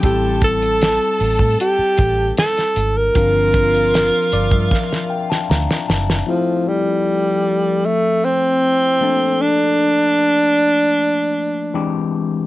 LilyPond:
<<
  \new Staff \with { instrumentName = "Violin section" } { \time 4/4 \key f \major \tempo 4 = 77 <a' a''>2.~ <a' a''>8 r8 | <f' f''>2.~ <f' f''>8 r8 | r1 | r1 | }
  \new Staff \with { instrumentName = "Alto saxophone" } { \time 4/4 \key f \major g'8 a'4. g'4 a'8. bes'16~ | bes'2. r4 | f8 g4. a8 c'4. | d'2.~ d'8 r8 | }
  \new Staff \with { instrumentName = "Tine electric piano" } { \time 4/4 \key f \major << { r1 | r4. d''16 e''16 f''8 g''16 a''16 bes''8 a''8 | r1 | r1 | } \\ { <g c' e' a'>1 | <f c' d' bes'>1 | <f a c' e' aes' a'>2.~ <f a c' e' aes' a'>8 <f a bes d' a'>8~ | <f a bes d' a'>2. <e gis bis d' g'>4 | } >> }
  \new Staff \with { instrumentName = "Fingered electric bass" } { \clef bass \time 4/4 \key f \major a,,4~ a,,16 r16 a,,16 a,16 r8 a,,8 r8 aes,,8 | g,,4~ g,,16 r16 g,,16 g,16 r4 d,16 r16 ges,,8 | r1 | r1 | }
  \new DrumStaff \with { instrumentName = "Drums" } \drummode { \time 4/4 <hh bd>8 <hh bd>16 hh16 <hh sn>8 hho16 bd16 hh8 <hh bd>8 <hh sn>16 <hh sn>16 hh8 | <hh bd>8 <hh bd>16 hh16 <hh sn>8 hh16 bd16 <bd sn>16 sn8 sn16 sn16 sn16 sn16 sn16 | r4 r4 r4 r4 | r4 r4 r4 r4 | }
>>